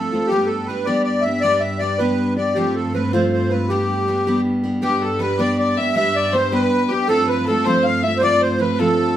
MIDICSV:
0, 0, Header, 1, 5, 480
1, 0, Start_track
1, 0, Tempo, 376884
1, 390, Time_signature, 6, 3, 24, 8
1, 11676, End_track
2, 0, Start_track
2, 0, Title_t, "Accordion"
2, 0, Program_c, 0, 21
2, 0, Note_on_c, 0, 69, 86
2, 346, Note_on_c, 0, 67, 98
2, 395, Note_off_c, 0, 69, 0
2, 587, Note_on_c, 0, 69, 78
2, 616, Note_off_c, 0, 67, 0
2, 839, Note_on_c, 0, 71, 86
2, 856, Note_off_c, 0, 69, 0
2, 1079, Note_on_c, 0, 74, 83
2, 1102, Note_off_c, 0, 71, 0
2, 1300, Note_off_c, 0, 74, 0
2, 1319, Note_on_c, 0, 74, 71
2, 1541, Note_on_c, 0, 76, 85
2, 1582, Note_off_c, 0, 74, 0
2, 1794, Note_on_c, 0, 74, 103
2, 1813, Note_off_c, 0, 76, 0
2, 2037, Note_on_c, 0, 76, 79
2, 2060, Note_off_c, 0, 74, 0
2, 2276, Note_on_c, 0, 74, 84
2, 2301, Note_off_c, 0, 76, 0
2, 2523, Note_on_c, 0, 71, 83
2, 2541, Note_off_c, 0, 74, 0
2, 2982, Note_off_c, 0, 71, 0
2, 3023, Note_on_c, 0, 74, 77
2, 3244, Note_on_c, 0, 67, 88
2, 3274, Note_off_c, 0, 74, 0
2, 3505, Note_off_c, 0, 67, 0
2, 3507, Note_on_c, 0, 69, 72
2, 3732, Note_off_c, 0, 69, 0
2, 3750, Note_on_c, 0, 71, 83
2, 3973, Note_off_c, 0, 71, 0
2, 3991, Note_on_c, 0, 72, 75
2, 4220, Note_off_c, 0, 72, 0
2, 4240, Note_on_c, 0, 72, 72
2, 4460, Note_on_c, 0, 71, 77
2, 4482, Note_off_c, 0, 72, 0
2, 4699, Note_on_c, 0, 67, 83
2, 4712, Note_off_c, 0, 71, 0
2, 5614, Note_off_c, 0, 67, 0
2, 6148, Note_on_c, 0, 67, 91
2, 6383, Note_on_c, 0, 69, 68
2, 6396, Note_off_c, 0, 67, 0
2, 6634, Note_off_c, 0, 69, 0
2, 6637, Note_on_c, 0, 71, 86
2, 6872, Note_on_c, 0, 74, 93
2, 6880, Note_off_c, 0, 71, 0
2, 7097, Note_off_c, 0, 74, 0
2, 7117, Note_on_c, 0, 74, 73
2, 7360, Note_off_c, 0, 74, 0
2, 7361, Note_on_c, 0, 76, 88
2, 7577, Note_off_c, 0, 76, 0
2, 7596, Note_on_c, 0, 76, 108
2, 7840, Note_off_c, 0, 76, 0
2, 7842, Note_on_c, 0, 74, 91
2, 8073, Note_on_c, 0, 72, 89
2, 8082, Note_off_c, 0, 74, 0
2, 8294, Note_off_c, 0, 72, 0
2, 8318, Note_on_c, 0, 71, 88
2, 8798, Note_on_c, 0, 67, 80
2, 8807, Note_off_c, 0, 71, 0
2, 9017, Note_off_c, 0, 67, 0
2, 9026, Note_on_c, 0, 69, 110
2, 9274, Note_off_c, 0, 69, 0
2, 9279, Note_on_c, 0, 71, 80
2, 9521, Note_off_c, 0, 71, 0
2, 9525, Note_on_c, 0, 69, 87
2, 9754, Note_on_c, 0, 72, 94
2, 9763, Note_off_c, 0, 69, 0
2, 9990, Note_on_c, 0, 77, 85
2, 9998, Note_off_c, 0, 72, 0
2, 10212, Note_off_c, 0, 77, 0
2, 10233, Note_on_c, 0, 76, 90
2, 10405, Note_on_c, 0, 72, 74
2, 10416, Note_off_c, 0, 76, 0
2, 10467, Note_off_c, 0, 72, 0
2, 10477, Note_on_c, 0, 74, 115
2, 10719, Note_off_c, 0, 74, 0
2, 10719, Note_on_c, 0, 72, 83
2, 10960, Note_off_c, 0, 72, 0
2, 10969, Note_on_c, 0, 71, 86
2, 11096, Note_off_c, 0, 71, 0
2, 11115, Note_on_c, 0, 71, 63
2, 11196, Note_off_c, 0, 71, 0
2, 11208, Note_on_c, 0, 69, 85
2, 11676, Note_off_c, 0, 69, 0
2, 11676, End_track
3, 0, Start_track
3, 0, Title_t, "Fiddle"
3, 0, Program_c, 1, 110
3, 6143, Note_on_c, 1, 67, 61
3, 6397, Note_on_c, 1, 69, 66
3, 6416, Note_off_c, 1, 67, 0
3, 6614, Note_on_c, 1, 71, 73
3, 6633, Note_off_c, 1, 69, 0
3, 6862, Note_off_c, 1, 71, 0
3, 6872, Note_on_c, 1, 74, 70
3, 7077, Note_off_c, 1, 74, 0
3, 7085, Note_on_c, 1, 74, 74
3, 7354, Note_on_c, 1, 76, 79
3, 7373, Note_off_c, 1, 74, 0
3, 7584, Note_off_c, 1, 76, 0
3, 7592, Note_on_c, 1, 76, 82
3, 8051, Note_on_c, 1, 72, 73
3, 8070, Note_off_c, 1, 76, 0
3, 8298, Note_on_c, 1, 71, 76
3, 8317, Note_off_c, 1, 72, 0
3, 8773, Note_on_c, 1, 67, 73
3, 8792, Note_off_c, 1, 71, 0
3, 9021, Note_off_c, 1, 67, 0
3, 9033, Note_on_c, 1, 69, 83
3, 9254, Note_off_c, 1, 69, 0
3, 9268, Note_on_c, 1, 71, 78
3, 9491, Note_off_c, 1, 71, 0
3, 9510, Note_on_c, 1, 69, 78
3, 9737, Note_on_c, 1, 72, 78
3, 9756, Note_off_c, 1, 69, 0
3, 9972, Note_on_c, 1, 77, 79
3, 9991, Note_off_c, 1, 72, 0
3, 10227, Note_on_c, 1, 76, 89
3, 10246, Note_off_c, 1, 77, 0
3, 10459, Note_off_c, 1, 76, 0
3, 10467, Note_on_c, 1, 74, 80
3, 10722, Note_on_c, 1, 72, 70
3, 10741, Note_off_c, 1, 74, 0
3, 10955, Note_off_c, 1, 72, 0
3, 10960, Note_on_c, 1, 71, 74
3, 11192, Note_on_c, 1, 69, 67
3, 11211, Note_off_c, 1, 71, 0
3, 11676, Note_off_c, 1, 69, 0
3, 11676, End_track
4, 0, Start_track
4, 0, Title_t, "Steel-string acoustic guitar"
4, 0, Program_c, 2, 25
4, 0, Note_on_c, 2, 53, 50
4, 0, Note_on_c, 2, 57, 61
4, 0, Note_on_c, 2, 60, 61
4, 0, Note_on_c, 2, 65, 65
4, 140, Note_off_c, 2, 65, 0
4, 155, Note_off_c, 2, 57, 0
4, 155, Note_on_c, 2, 65, 47
4, 159, Note_off_c, 2, 60, 0
4, 162, Note_off_c, 2, 53, 0
4, 172, Note_on_c, 2, 57, 38
4, 185, Note_on_c, 2, 60, 39
4, 392, Note_off_c, 2, 65, 0
4, 401, Note_off_c, 2, 57, 0
4, 402, Note_off_c, 2, 60, 0
4, 403, Note_on_c, 2, 55, 62
4, 407, Note_on_c, 2, 59, 70
4, 412, Note_on_c, 2, 62, 64
4, 426, Note_on_c, 2, 67, 69
4, 862, Note_off_c, 2, 55, 0
4, 873, Note_off_c, 2, 59, 0
4, 878, Note_on_c, 2, 55, 51
4, 881, Note_off_c, 2, 62, 0
4, 888, Note_off_c, 2, 67, 0
4, 889, Note_on_c, 2, 59, 50
4, 895, Note_on_c, 2, 62, 53
4, 905, Note_on_c, 2, 67, 60
4, 1095, Note_off_c, 2, 62, 0
4, 1095, Note_off_c, 2, 67, 0
4, 1110, Note_off_c, 2, 59, 0
4, 1111, Note_on_c, 2, 62, 66
4, 1111, Note_on_c, 2, 67, 69
4, 1114, Note_off_c, 2, 55, 0
4, 1125, Note_on_c, 2, 59, 62
4, 1135, Note_on_c, 2, 55, 50
4, 1586, Note_off_c, 2, 67, 0
4, 1590, Note_off_c, 2, 62, 0
4, 1598, Note_off_c, 2, 59, 0
4, 1602, Note_off_c, 2, 55, 0
4, 1602, Note_on_c, 2, 67, 48
4, 1614, Note_on_c, 2, 62, 41
4, 1636, Note_on_c, 2, 59, 40
4, 1826, Note_off_c, 2, 62, 0
4, 1826, Note_on_c, 2, 55, 69
4, 1827, Note_off_c, 2, 59, 0
4, 1833, Note_off_c, 2, 67, 0
4, 1841, Note_on_c, 2, 62, 71
4, 1842, Note_on_c, 2, 59, 64
4, 1848, Note_on_c, 2, 67, 72
4, 2285, Note_off_c, 2, 55, 0
4, 2298, Note_off_c, 2, 59, 0
4, 2301, Note_on_c, 2, 55, 51
4, 2307, Note_off_c, 2, 62, 0
4, 2313, Note_on_c, 2, 59, 48
4, 2315, Note_off_c, 2, 67, 0
4, 2322, Note_on_c, 2, 62, 55
4, 2330, Note_on_c, 2, 67, 64
4, 2526, Note_off_c, 2, 67, 0
4, 2541, Note_off_c, 2, 59, 0
4, 2541, Note_off_c, 2, 62, 0
4, 2541, Note_on_c, 2, 67, 70
4, 2545, Note_off_c, 2, 55, 0
4, 2556, Note_on_c, 2, 59, 57
4, 2556, Note_on_c, 2, 62, 67
4, 2559, Note_on_c, 2, 55, 62
4, 2998, Note_off_c, 2, 67, 0
4, 3013, Note_on_c, 2, 67, 43
4, 3021, Note_off_c, 2, 62, 0
4, 3030, Note_off_c, 2, 59, 0
4, 3035, Note_off_c, 2, 55, 0
4, 3036, Note_on_c, 2, 62, 42
4, 3045, Note_on_c, 2, 59, 38
4, 3259, Note_on_c, 2, 53, 68
4, 3260, Note_off_c, 2, 59, 0
4, 3262, Note_off_c, 2, 67, 0
4, 3265, Note_on_c, 2, 60, 69
4, 3268, Note_off_c, 2, 62, 0
4, 3273, Note_on_c, 2, 57, 67
4, 3280, Note_on_c, 2, 65, 74
4, 3725, Note_off_c, 2, 53, 0
4, 3735, Note_off_c, 2, 60, 0
4, 3741, Note_on_c, 2, 53, 51
4, 3743, Note_off_c, 2, 57, 0
4, 3751, Note_on_c, 2, 60, 54
4, 3755, Note_off_c, 2, 65, 0
4, 3758, Note_on_c, 2, 57, 60
4, 3772, Note_on_c, 2, 65, 58
4, 3972, Note_off_c, 2, 65, 0
4, 3984, Note_off_c, 2, 57, 0
4, 3985, Note_off_c, 2, 53, 0
4, 3988, Note_on_c, 2, 65, 78
4, 3990, Note_off_c, 2, 60, 0
4, 3999, Note_on_c, 2, 57, 66
4, 4005, Note_on_c, 2, 60, 61
4, 4006, Note_on_c, 2, 53, 52
4, 4451, Note_off_c, 2, 65, 0
4, 4463, Note_off_c, 2, 57, 0
4, 4467, Note_on_c, 2, 65, 54
4, 4478, Note_off_c, 2, 53, 0
4, 4478, Note_off_c, 2, 60, 0
4, 4478, Note_on_c, 2, 57, 40
4, 4501, Note_on_c, 2, 60, 42
4, 4708, Note_off_c, 2, 65, 0
4, 4714, Note_off_c, 2, 57, 0
4, 4714, Note_on_c, 2, 55, 67
4, 4719, Note_off_c, 2, 60, 0
4, 4724, Note_on_c, 2, 59, 70
4, 4726, Note_on_c, 2, 62, 74
4, 4738, Note_on_c, 2, 67, 71
4, 5186, Note_off_c, 2, 55, 0
4, 5191, Note_on_c, 2, 55, 49
4, 5196, Note_off_c, 2, 59, 0
4, 5201, Note_on_c, 2, 59, 60
4, 5204, Note_off_c, 2, 62, 0
4, 5210, Note_on_c, 2, 62, 58
4, 5211, Note_off_c, 2, 67, 0
4, 5216, Note_on_c, 2, 67, 57
4, 5421, Note_off_c, 2, 67, 0
4, 5429, Note_off_c, 2, 62, 0
4, 5431, Note_off_c, 2, 55, 0
4, 5435, Note_off_c, 2, 59, 0
4, 5437, Note_on_c, 2, 67, 72
4, 5444, Note_on_c, 2, 62, 71
4, 5454, Note_on_c, 2, 59, 69
4, 5459, Note_on_c, 2, 55, 61
4, 5898, Note_off_c, 2, 67, 0
4, 5903, Note_on_c, 2, 67, 59
4, 5912, Note_off_c, 2, 62, 0
4, 5917, Note_on_c, 2, 62, 46
4, 5924, Note_off_c, 2, 59, 0
4, 5929, Note_on_c, 2, 59, 41
4, 6132, Note_off_c, 2, 59, 0
4, 6133, Note_off_c, 2, 55, 0
4, 6137, Note_off_c, 2, 62, 0
4, 6138, Note_on_c, 2, 55, 61
4, 6140, Note_off_c, 2, 67, 0
4, 6147, Note_on_c, 2, 59, 70
4, 6152, Note_on_c, 2, 62, 72
4, 6155, Note_on_c, 2, 67, 80
4, 6601, Note_off_c, 2, 55, 0
4, 6609, Note_off_c, 2, 59, 0
4, 6616, Note_on_c, 2, 55, 55
4, 6624, Note_off_c, 2, 62, 0
4, 6624, Note_on_c, 2, 59, 52
4, 6632, Note_off_c, 2, 67, 0
4, 6640, Note_on_c, 2, 62, 55
4, 6645, Note_on_c, 2, 67, 66
4, 6847, Note_off_c, 2, 67, 0
4, 6857, Note_off_c, 2, 59, 0
4, 6857, Note_off_c, 2, 62, 0
4, 6862, Note_on_c, 2, 67, 73
4, 6863, Note_off_c, 2, 55, 0
4, 6872, Note_on_c, 2, 59, 61
4, 6872, Note_on_c, 2, 62, 62
4, 6880, Note_on_c, 2, 55, 51
4, 7332, Note_off_c, 2, 67, 0
4, 7348, Note_on_c, 2, 67, 51
4, 7351, Note_off_c, 2, 59, 0
4, 7351, Note_off_c, 2, 62, 0
4, 7355, Note_off_c, 2, 55, 0
4, 7368, Note_on_c, 2, 62, 41
4, 7382, Note_on_c, 2, 59, 41
4, 7576, Note_off_c, 2, 59, 0
4, 7581, Note_off_c, 2, 62, 0
4, 7581, Note_on_c, 2, 55, 68
4, 7588, Note_off_c, 2, 67, 0
4, 7591, Note_on_c, 2, 59, 68
4, 7597, Note_on_c, 2, 62, 68
4, 7604, Note_on_c, 2, 67, 81
4, 8044, Note_off_c, 2, 55, 0
4, 8058, Note_off_c, 2, 59, 0
4, 8060, Note_on_c, 2, 55, 51
4, 8066, Note_off_c, 2, 62, 0
4, 8073, Note_on_c, 2, 59, 52
4, 8076, Note_off_c, 2, 67, 0
4, 8081, Note_on_c, 2, 62, 61
4, 8091, Note_on_c, 2, 67, 58
4, 8289, Note_off_c, 2, 67, 0
4, 8296, Note_off_c, 2, 62, 0
4, 8301, Note_off_c, 2, 59, 0
4, 8304, Note_off_c, 2, 55, 0
4, 8304, Note_on_c, 2, 67, 67
4, 8311, Note_on_c, 2, 62, 68
4, 8316, Note_on_c, 2, 59, 64
4, 8322, Note_on_c, 2, 55, 51
4, 8773, Note_off_c, 2, 67, 0
4, 8786, Note_off_c, 2, 62, 0
4, 8788, Note_on_c, 2, 67, 52
4, 8792, Note_off_c, 2, 59, 0
4, 8795, Note_off_c, 2, 55, 0
4, 8802, Note_on_c, 2, 62, 53
4, 8816, Note_on_c, 2, 59, 37
4, 9022, Note_on_c, 2, 53, 65
4, 9023, Note_off_c, 2, 62, 0
4, 9026, Note_off_c, 2, 59, 0
4, 9028, Note_off_c, 2, 67, 0
4, 9028, Note_on_c, 2, 57, 73
4, 9031, Note_on_c, 2, 60, 77
4, 9043, Note_on_c, 2, 65, 72
4, 9499, Note_off_c, 2, 53, 0
4, 9508, Note_off_c, 2, 57, 0
4, 9509, Note_off_c, 2, 60, 0
4, 9515, Note_off_c, 2, 65, 0
4, 9515, Note_on_c, 2, 53, 54
4, 9523, Note_on_c, 2, 60, 57
4, 9535, Note_on_c, 2, 57, 58
4, 9539, Note_on_c, 2, 65, 61
4, 9739, Note_off_c, 2, 65, 0
4, 9746, Note_off_c, 2, 57, 0
4, 9751, Note_off_c, 2, 53, 0
4, 9755, Note_on_c, 2, 65, 64
4, 9756, Note_off_c, 2, 60, 0
4, 9762, Note_on_c, 2, 57, 67
4, 9769, Note_on_c, 2, 60, 68
4, 9779, Note_on_c, 2, 53, 56
4, 10204, Note_off_c, 2, 65, 0
4, 10219, Note_on_c, 2, 65, 43
4, 10224, Note_off_c, 2, 57, 0
4, 10238, Note_off_c, 2, 60, 0
4, 10239, Note_on_c, 2, 57, 43
4, 10243, Note_off_c, 2, 53, 0
4, 10254, Note_on_c, 2, 60, 40
4, 10451, Note_off_c, 2, 60, 0
4, 10461, Note_on_c, 2, 53, 61
4, 10464, Note_off_c, 2, 65, 0
4, 10465, Note_off_c, 2, 57, 0
4, 10467, Note_on_c, 2, 60, 70
4, 10480, Note_on_c, 2, 57, 73
4, 10482, Note_on_c, 2, 65, 75
4, 10916, Note_off_c, 2, 53, 0
4, 10929, Note_off_c, 2, 60, 0
4, 10932, Note_on_c, 2, 53, 52
4, 10939, Note_off_c, 2, 57, 0
4, 10944, Note_on_c, 2, 60, 53
4, 10946, Note_off_c, 2, 65, 0
4, 10954, Note_on_c, 2, 57, 61
4, 10961, Note_on_c, 2, 65, 57
4, 11178, Note_off_c, 2, 65, 0
4, 11180, Note_off_c, 2, 53, 0
4, 11184, Note_off_c, 2, 57, 0
4, 11186, Note_off_c, 2, 60, 0
4, 11193, Note_on_c, 2, 65, 66
4, 11199, Note_on_c, 2, 57, 60
4, 11202, Note_on_c, 2, 60, 59
4, 11211, Note_on_c, 2, 53, 57
4, 11659, Note_off_c, 2, 65, 0
4, 11673, Note_off_c, 2, 57, 0
4, 11675, Note_off_c, 2, 60, 0
4, 11676, Note_off_c, 2, 53, 0
4, 11676, End_track
5, 0, Start_track
5, 0, Title_t, "String section"
5, 0, Program_c, 3, 48
5, 0, Note_on_c, 3, 43, 57
5, 367, Note_off_c, 3, 43, 0
5, 382, Note_on_c, 3, 43, 63
5, 6142, Note_off_c, 3, 43, 0
5, 6157, Note_on_c, 3, 43, 64
5, 11676, Note_off_c, 3, 43, 0
5, 11676, End_track
0, 0, End_of_file